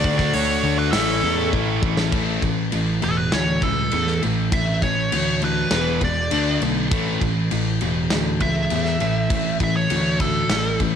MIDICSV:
0, 0, Header, 1, 6, 480
1, 0, Start_track
1, 0, Key_signature, 3, "major"
1, 0, Tempo, 597610
1, 1712, Time_signature, 4, 2, 24, 8
1, 8799, End_track
2, 0, Start_track
2, 0, Title_t, "Lead electric guitar"
2, 0, Program_c, 0, 29
2, 0, Note_on_c, 0, 74, 99
2, 130, Note_off_c, 0, 74, 0
2, 144, Note_on_c, 0, 74, 83
2, 272, Note_off_c, 0, 74, 0
2, 272, Note_on_c, 0, 73, 93
2, 631, Note_on_c, 0, 71, 76
2, 643, Note_off_c, 0, 73, 0
2, 733, Note_off_c, 0, 71, 0
2, 736, Note_on_c, 0, 69, 80
2, 1191, Note_off_c, 0, 69, 0
2, 2443, Note_on_c, 0, 69, 84
2, 2552, Note_off_c, 0, 69, 0
2, 2555, Note_on_c, 0, 71, 79
2, 2665, Note_on_c, 0, 73, 79
2, 2670, Note_off_c, 0, 71, 0
2, 2901, Note_off_c, 0, 73, 0
2, 2917, Note_on_c, 0, 69, 90
2, 3380, Note_off_c, 0, 69, 0
2, 3640, Note_on_c, 0, 76, 91
2, 3869, Note_off_c, 0, 76, 0
2, 3880, Note_on_c, 0, 73, 76
2, 4343, Note_off_c, 0, 73, 0
2, 4371, Note_on_c, 0, 71, 80
2, 4829, Note_off_c, 0, 71, 0
2, 4855, Note_on_c, 0, 74, 95
2, 5311, Note_off_c, 0, 74, 0
2, 6762, Note_on_c, 0, 76, 92
2, 7691, Note_off_c, 0, 76, 0
2, 7739, Note_on_c, 0, 76, 83
2, 7841, Note_off_c, 0, 76, 0
2, 7844, Note_on_c, 0, 73, 72
2, 8190, Note_off_c, 0, 73, 0
2, 8203, Note_on_c, 0, 69, 99
2, 8665, Note_off_c, 0, 69, 0
2, 8799, End_track
3, 0, Start_track
3, 0, Title_t, "Distorted electric guitar"
3, 0, Program_c, 1, 30
3, 0, Note_on_c, 1, 66, 109
3, 752, Note_off_c, 1, 66, 0
3, 763, Note_on_c, 1, 61, 80
3, 769, Note_on_c, 1, 64, 104
3, 1702, Note_off_c, 1, 61, 0
3, 1705, Note_off_c, 1, 64, 0
3, 8799, End_track
4, 0, Start_track
4, 0, Title_t, "Distorted electric guitar"
4, 0, Program_c, 2, 30
4, 0, Note_on_c, 2, 50, 101
4, 0, Note_on_c, 2, 57, 96
4, 0, Note_on_c, 2, 62, 99
4, 495, Note_off_c, 2, 50, 0
4, 499, Note_off_c, 2, 62, 0
4, 501, Note_off_c, 2, 57, 0
4, 509, Note_on_c, 2, 62, 78
4, 515, Note_on_c, 2, 57, 85
4, 522, Note_on_c, 2, 50, 70
4, 736, Note_off_c, 2, 62, 0
4, 740, Note_off_c, 2, 57, 0
4, 743, Note_off_c, 2, 50, 0
4, 746, Note_on_c, 2, 45, 101
4, 754, Note_on_c, 2, 52, 96
4, 763, Note_on_c, 2, 57, 87
4, 1454, Note_off_c, 2, 45, 0
4, 1456, Note_off_c, 2, 57, 0
4, 1458, Note_off_c, 2, 52, 0
4, 1466, Note_on_c, 2, 57, 85
4, 1475, Note_on_c, 2, 52, 80
4, 1481, Note_on_c, 2, 45, 77
4, 1692, Note_off_c, 2, 45, 0
4, 1694, Note_off_c, 2, 57, 0
4, 1697, Note_off_c, 2, 52, 0
4, 1702, Note_on_c, 2, 45, 86
4, 1706, Note_on_c, 2, 52, 91
4, 1710, Note_on_c, 2, 57, 87
4, 1932, Note_off_c, 2, 45, 0
4, 1934, Note_off_c, 2, 52, 0
4, 1936, Note_off_c, 2, 57, 0
4, 1950, Note_on_c, 2, 45, 61
4, 1954, Note_on_c, 2, 52, 72
4, 2166, Note_off_c, 2, 45, 0
4, 2168, Note_off_c, 2, 52, 0
4, 2190, Note_on_c, 2, 45, 66
4, 2194, Note_on_c, 2, 52, 71
4, 2406, Note_off_c, 2, 45, 0
4, 2408, Note_off_c, 2, 52, 0
4, 2430, Note_on_c, 2, 45, 65
4, 2432, Note_on_c, 2, 52, 75
4, 2647, Note_off_c, 2, 45, 0
4, 2648, Note_off_c, 2, 52, 0
4, 2671, Note_on_c, 2, 45, 65
4, 2675, Note_on_c, 2, 52, 77
4, 2887, Note_off_c, 2, 45, 0
4, 2889, Note_off_c, 2, 52, 0
4, 2911, Note_on_c, 2, 45, 73
4, 2914, Note_on_c, 2, 52, 86
4, 3127, Note_off_c, 2, 45, 0
4, 3129, Note_off_c, 2, 52, 0
4, 3149, Note_on_c, 2, 45, 80
4, 3153, Note_on_c, 2, 52, 77
4, 3366, Note_off_c, 2, 45, 0
4, 3369, Note_off_c, 2, 52, 0
4, 3393, Note_on_c, 2, 45, 69
4, 3396, Note_on_c, 2, 52, 77
4, 3609, Note_off_c, 2, 45, 0
4, 3610, Note_off_c, 2, 52, 0
4, 3640, Note_on_c, 2, 45, 69
4, 3643, Note_on_c, 2, 52, 91
4, 3852, Note_off_c, 2, 45, 0
4, 3854, Note_off_c, 2, 52, 0
4, 3880, Note_on_c, 2, 45, 71
4, 3882, Note_on_c, 2, 52, 63
4, 4092, Note_off_c, 2, 45, 0
4, 4093, Note_off_c, 2, 52, 0
4, 4123, Note_on_c, 2, 45, 66
4, 4127, Note_on_c, 2, 52, 66
4, 4334, Note_off_c, 2, 45, 0
4, 4336, Note_off_c, 2, 52, 0
4, 4357, Note_on_c, 2, 45, 65
4, 4360, Note_on_c, 2, 52, 75
4, 4571, Note_off_c, 2, 45, 0
4, 4573, Note_off_c, 2, 52, 0
4, 4595, Note_on_c, 2, 40, 74
4, 4600, Note_on_c, 2, 47, 77
4, 4601, Note_on_c, 2, 52, 86
4, 4820, Note_off_c, 2, 40, 0
4, 4823, Note_off_c, 2, 47, 0
4, 4823, Note_off_c, 2, 52, 0
4, 4836, Note_on_c, 2, 40, 72
4, 4837, Note_on_c, 2, 47, 69
4, 5051, Note_off_c, 2, 40, 0
4, 5052, Note_off_c, 2, 47, 0
4, 5069, Note_on_c, 2, 50, 84
4, 5075, Note_on_c, 2, 57, 95
4, 5075, Note_on_c, 2, 62, 104
4, 5298, Note_off_c, 2, 50, 0
4, 5300, Note_off_c, 2, 57, 0
4, 5300, Note_off_c, 2, 62, 0
4, 5314, Note_on_c, 2, 50, 74
4, 5319, Note_on_c, 2, 57, 79
4, 5531, Note_off_c, 2, 50, 0
4, 5533, Note_off_c, 2, 57, 0
4, 5551, Note_on_c, 2, 45, 81
4, 5552, Note_on_c, 2, 52, 93
4, 5556, Note_on_c, 2, 57, 104
4, 5779, Note_off_c, 2, 45, 0
4, 5780, Note_off_c, 2, 52, 0
4, 5782, Note_off_c, 2, 57, 0
4, 5793, Note_on_c, 2, 45, 76
4, 5796, Note_on_c, 2, 52, 73
4, 6010, Note_off_c, 2, 45, 0
4, 6012, Note_off_c, 2, 52, 0
4, 6033, Note_on_c, 2, 45, 68
4, 6034, Note_on_c, 2, 52, 70
4, 6251, Note_off_c, 2, 45, 0
4, 6251, Note_off_c, 2, 52, 0
4, 6273, Note_on_c, 2, 45, 62
4, 6277, Note_on_c, 2, 52, 76
4, 6491, Note_off_c, 2, 45, 0
4, 6493, Note_off_c, 2, 52, 0
4, 6514, Note_on_c, 2, 45, 70
4, 6516, Note_on_c, 2, 52, 82
4, 6731, Note_off_c, 2, 45, 0
4, 6732, Note_off_c, 2, 52, 0
4, 6749, Note_on_c, 2, 45, 75
4, 6753, Note_on_c, 2, 52, 80
4, 6969, Note_off_c, 2, 45, 0
4, 6971, Note_off_c, 2, 52, 0
4, 6995, Note_on_c, 2, 45, 76
4, 6997, Note_on_c, 2, 52, 84
4, 7212, Note_off_c, 2, 45, 0
4, 7213, Note_off_c, 2, 52, 0
4, 7236, Note_on_c, 2, 45, 71
4, 7240, Note_on_c, 2, 52, 69
4, 7453, Note_off_c, 2, 45, 0
4, 7454, Note_off_c, 2, 52, 0
4, 7469, Note_on_c, 2, 45, 70
4, 7473, Note_on_c, 2, 52, 81
4, 7689, Note_off_c, 2, 45, 0
4, 7691, Note_off_c, 2, 52, 0
4, 7711, Note_on_c, 2, 45, 72
4, 7715, Note_on_c, 2, 52, 77
4, 7930, Note_off_c, 2, 45, 0
4, 7932, Note_off_c, 2, 52, 0
4, 7948, Note_on_c, 2, 45, 69
4, 7953, Note_on_c, 2, 52, 72
4, 8169, Note_off_c, 2, 45, 0
4, 8171, Note_off_c, 2, 52, 0
4, 8197, Note_on_c, 2, 45, 66
4, 8198, Note_on_c, 2, 52, 82
4, 8413, Note_off_c, 2, 45, 0
4, 8414, Note_off_c, 2, 52, 0
4, 8428, Note_on_c, 2, 45, 72
4, 8435, Note_on_c, 2, 52, 75
4, 8649, Note_off_c, 2, 45, 0
4, 8652, Note_off_c, 2, 52, 0
4, 8671, Note_on_c, 2, 45, 72
4, 8673, Note_on_c, 2, 52, 85
4, 8799, Note_off_c, 2, 45, 0
4, 8799, Note_off_c, 2, 52, 0
4, 8799, End_track
5, 0, Start_track
5, 0, Title_t, "Picked electric bass"
5, 0, Program_c, 3, 34
5, 35, Note_on_c, 3, 38, 103
5, 262, Note_off_c, 3, 38, 0
5, 274, Note_on_c, 3, 38, 96
5, 501, Note_off_c, 3, 38, 0
5, 512, Note_on_c, 3, 38, 92
5, 740, Note_off_c, 3, 38, 0
5, 751, Note_on_c, 3, 33, 90
5, 979, Note_off_c, 3, 33, 0
5, 991, Note_on_c, 3, 40, 82
5, 1219, Note_off_c, 3, 40, 0
5, 1230, Note_on_c, 3, 33, 97
5, 1459, Note_off_c, 3, 33, 0
5, 1465, Note_on_c, 3, 33, 86
5, 1705, Note_off_c, 3, 33, 0
5, 1708, Note_on_c, 3, 33, 80
5, 1915, Note_off_c, 3, 33, 0
5, 1949, Note_on_c, 3, 33, 84
5, 2155, Note_off_c, 3, 33, 0
5, 2199, Note_on_c, 3, 33, 86
5, 2401, Note_off_c, 3, 33, 0
5, 2438, Note_on_c, 3, 28, 82
5, 2641, Note_off_c, 3, 28, 0
5, 2680, Note_on_c, 3, 38, 77
5, 2882, Note_off_c, 3, 38, 0
5, 2910, Note_on_c, 3, 37, 83
5, 3117, Note_off_c, 3, 37, 0
5, 3159, Note_on_c, 3, 40, 83
5, 3361, Note_off_c, 3, 40, 0
5, 3401, Note_on_c, 3, 33, 81
5, 3603, Note_off_c, 3, 33, 0
5, 3635, Note_on_c, 3, 33, 79
5, 3840, Note_off_c, 3, 33, 0
5, 3872, Note_on_c, 3, 33, 87
5, 4078, Note_off_c, 3, 33, 0
5, 4119, Note_on_c, 3, 38, 83
5, 4529, Note_off_c, 3, 38, 0
5, 4593, Note_on_c, 3, 28, 84
5, 4799, Note_off_c, 3, 28, 0
5, 4834, Note_on_c, 3, 28, 86
5, 5040, Note_off_c, 3, 28, 0
5, 5077, Note_on_c, 3, 38, 89
5, 5282, Note_off_c, 3, 38, 0
5, 5313, Note_on_c, 3, 35, 79
5, 5520, Note_off_c, 3, 35, 0
5, 5553, Note_on_c, 3, 33, 87
5, 5760, Note_off_c, 3, 33, 0
5, 5793, Note_on_c, 3, 33, 98
5, 6000, Note_off_c, 3, 33, 0
5, 6043, Note_on_c, 3, 33, 85
5, 6246, Note_off_c, 3, 33, 0
5, 6282, Note_on_c, 3, 28, 84
5, 6486, Note_off_c, 3, 28, 0
5, 6517, Note_on_c, 3, 38, 91
5, 6723, Note_off_c, 3, 38, 0
5, 6753, Note_on_c, 3, 37, 82
5, 6961, Note_off_c, 3, 37, 0
5, 6996, Note_on_c, 3, 40, 88
5, 7202, Note_off_c, 3, 40, 0
5, 7236, Note_on_c, 3, 33, 83
5, 7442, Note_off_c, 3, 33, 0
5, 7474, Note_on_c, 3, 33, 84
5, 7681, Note_off_c, 3, 33, 0
5, 7712, Note_on_c, 3, 33, 96
5, 7920, Note_off_c, 3, 33, 0
5, 7958, Note_on_c, 3, 38, 95
5, 8369, Note_off_c, 3, 38, 0
5, 8438, Note_on_c, 3, 33, 84
5, 8643, Note_off_c, 3, 33, 0
5, 8676, Note_on_c, 3, 33, 77
5, 8799, Note_off_c, 3, 33, 0
5, 8799, End_track
6, 0, Start_track
6, 0, Title_t, "Drums"
6, 34, Note_on_c, 9, 36, 95
6, 114, Note_off_c, 9, 36, 0
6, 149, Note_on_c, 9, 38, 37
6, 153, Note_on_c, 9, 36, 85
6, 230, Note_off_c, 9, 38, 0
6, 233, Note_off_c, 9, 36, 0
6, 268, Note_on_c, 9, 46, 66
6, 348, Note_off_c, 9, 46, 0
6, 747, Note_on_c, 9, 38, 104
6, 747, Note_on_c, 9, 46, 69
6, 827, Note_off_c, 9, 38, 0
6, 827, Note_off_c, 9, 46, 0
6, 1229, Note_on_c, 9, 36, 69
6, 1309, Note_off_c, 9, 36, 0
6, 1467, Note_on_c, 9, 36, 106
6, 1548, Note_off_c, 9, 36, 0
6, 1586, Note_on_c, 9, 38, 98
6, 1666, Note_off_c, 9, 38, 0
6, 1704, Note_on_c, 9, 49, 80
6, 1706, Note_on_c, 9, 36, 111
6, 1785, Note_off_c, 9, 49, 0
6, 1787, Note_off_c, 9, 36, 0
6, 1947, Note_on_c, 9, 36, 83
6, 1947, Note_on_c, 9, 49, 50
6, 2027, Note_off_c, 9, 36, 0
6, 2028, Note_off_c, 9, 49, 0
6, 2184, Note_on_c, 9, 49, 70
6, 2265, Note_off_c, 9, 49, 0
6, 2426, Note_on_c, 9, 49, 57
6, 2507, Note_off_c, 9, 49, 0
6, 2668, Note_on_c, 9, 38, 100
6, 2668, Note_on_c, 9, 49, 67
6, 2748, Note_off_c, 9, 38, 0
6, 2748, Note_off_c, 9, 49, 0
6, 2906, Note_on_c, 9, 49, 46
6, 2908, Note_on_c, 9, 36, 78
6, 2987, Note_off_c, 9, 49, 0
6, 2988, Note_off_c, 9, 36, 0
6, 3144, Note_on_c, 9, 49, 65
6, 3225, Note_off_c, 9, 49, 0
6, 3268, Note_on_c, 9, 38, 30
6, 3349, Note_off_c, 9, 38, 0
6, 3394, Note_on_c, 9, 49, 59
6, 3475, Note_off_c, 9, 49, 0
6, 3632, Note_on_c, 9, 36, 109
6, 3635, Note_on_c, 9, 49, 81
6, 3712, Note_off_c, 9, 36, 0
6, 3715, Note_off_c, 9, 49, 0
6, 3872, Note_on_c, 9, 49, 63
6, 3873, Note_on_c, 9, 36, 72
6, 3952, Note_off_c, 9, 49, 0
6, 3953, Note_off_c, 9, 36, 0
6, 4113, Note_on_c, 9, 49, 81
6, 4194, Note_off_c, 9, 49, 0
6, 4350, Note_on_c, 9, 49, 55
6, 4430, Note_off_c, 9, 49, 0
6, 4585, Note_on_c, 9, 38, 111
6, 4585, Note_on_c, 9, 49, 71
6, 4665, Note_off_c, 9, 38, 0
6, 4665, Note_off_c, 9, 49, 0
6, 4826, Note_on_c, 9, 49, 50
6, 4831, Note_on_c, 9, 36, 69
6, 4907, Note_off_c, 9, 49, 0
6, 4912, Note_off_c, 9, 36, 0
6, 5068, Note_on_c, 9, 49, 77
6, 5148, Note_off_c, 9, 49, 0
6, 5314, Note_on_c, 9, 49, 59
6, 5395, Note_off_c, 9, 49, 0
6, 5553, Note_on_c, 9, 49, 80
6, 5554, Note_on_c, 9, 36, 120
6, 5634, Note_off_c, 9, 36, 0
6, 5634, Note_off_c, 9, 49, 0
6, 5794, Note_on_c, 9, 36, 74
6, 5794, Note_on_c, 9, 49, 51
6, 5874, Note_off_c, 9, 49, 0
6, 5875, Note_off_c, 9, 36, 0
6, 6032, Note_on_c, 9, 49, 69
6, 6112, Note_off_c, 9, 49, 0
6, 6271, Note_on_c, 9, 49, 58
6, 6351, Note_off_c, 9, 49, 0
6, 6509, Note_on_c, 9, 38, 100
6, 6509, Note_on_c, 9, 49, 65
6, 6590, Note_off_c, 9, 38, 0
6, 6590, Note_off_c, 9, 49, 0
6, 6749, Note_on_c, 9, 49, 53
6, 6752, Note_on_c, 9, 36, 80
6, 6829, Note_off_c, 9, 49, 0
6, 6833, Note_off_c, 9, 36, 0
6, 6989, Note_on_c, 9, 49, 71
6, 7070, Note_off_c, 9, 49, 0
6, 7109, Note_on_c, 9, 38, 30
6, 7190, Note_off_c, 9, 38, 0
6, 7230, Note_on_c, 9, 49, 56
6, 7310, Note_off_c, 9, 49, 0
6, 7471, Note_on_c, 9, 49, 82
6, 7472, Note_on_c, 9, 36, 116
6, 7551, Note_off_c, 9, 49, 0
6, 7552, Note_off_c, 9, 36, 0
6, 7710, Note_on_c, 9, 49, 56
6, 7713, Note_on_c, 9, 36, 80
6, 7790, Note_off_c, 9, 49, 0
6, 7793, Note_off_c, 9, 36, 0
6, 7952, Note_on_c, 9, 49, 84
6, 8032, Note_off_c, 9, 49, 0
6, 8190, Note_on_c, 9, 49, 64
6, 8193, Note_on_c, 9, 36, 77
6, 8271, Note_off_c, 9, 49, 0
6, 8273, Note_off_c, 9, 36, 0
6, 8430, Note_on_c, 9, 38, 102
6, 8430, Note_on_c, 9, 49, 87
6, 8510, Note_off_c, 9, 38, 0
6, 8510, Note_off_c, 9, 49, 0
6, 8673, Note_on_c, 9, 49, 55
6, 8675, Note_on_c, 9, 36, 73
6, 8754, Note_off_c, 9, 49, 0
6, 8755, Note_off_c, 9, 36, 0
6, 8799, End_track
0, 0, End_of_file